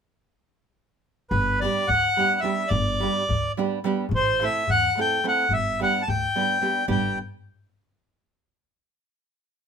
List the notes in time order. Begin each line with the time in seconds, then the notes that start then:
1.30 G1 B4, darbuka dum
1.60 G3 B3 D4 D5, darbuka tek
1.64 G4
1.88 D2 F#5, darbuka dum
2.16 G3 B3 D4 G4, darbuka tek
2.32 darbuka tek
2.40 G3 B3 E5
2.44 D4 G4, darbuka tek
2.59 darbuka tek
2.68 G1 D5, darbuka dum
3.00 G3 B3 D4 G4, darbuka tek
3.16 darbuka tek
3.29 D2, darbuka dum
3.57 G3 B3 D4 G4, darbuka tek
3.72 darbuka tek
3.84 G3 B3 D4 G4, darbuka tek
3.97 darbuka tek
4.09 A1, darbuka dum
4.15 C5
4.40 A3 C4 E4 A4, darbuka tek
4.44 E5
4.68 E2 F#5, darbuka dum
4.95 A3 C4 E4 A4, darbuka tek
5.01 G5
5.24 A3 C4 E4 A4, darbuka tek
5.28 F#5
5.36 darbuka tek
5.49 G1, darbuka dum
5.53 E5
5.64 darbuka tek
5.80 G3 B3 D4 G4 F#5, darbuka tek
6.02 A5
6.08 D2 G5, darbuka dum
6.36 G3 B3 D4 G4, darbuka tek
6.61 G3 B3 D4 G4, darbuka tek
6.88 G1 G3 B3 D4 G4 G5, darbuka dum